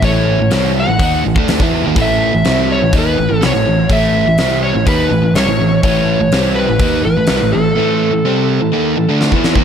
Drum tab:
HH |o---o---o---o---|o---o---o---o---|o---o---o---o---|o---o---o---o---|
SD |----o-------o---|----o-------o---|----o-------o---|----o-------o---|
BD |o-------o--o-o--|o-------o-------|o-------o-------|o-------o-------|

HH |----------------|
SD |------------o-o-|
BD |-------------o-o|